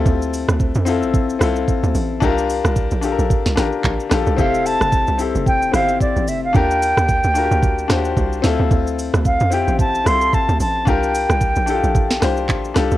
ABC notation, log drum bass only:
X:1
M:4/4
L:1/16
Q:"Swing 16ths" 1/4=111
K:Dm
V:1 name="Log drum bass" clef=bass
D,,3 D,,2 F,,2 A,,,3 C,,2 z D,, A,,,2 | C,,3 C,,2 B,,,2 B,,, z C,, A,,, z B,,, z B,,, C,, | F,,,3 F,,,2 C,,2 F,,,3 G,,,2 z A,,, F,,,2 | _E,,3 E,,2 D,,2 D,,3 E,,2 C,,2 D,, D,, |
D,,3 D,,2 F,,2 A,,,3 C,,2 z D,, A,,,2 | C,,3 C,,2 B,,,2 B,,,3 C,,2 B,,,2 C,, C,, |]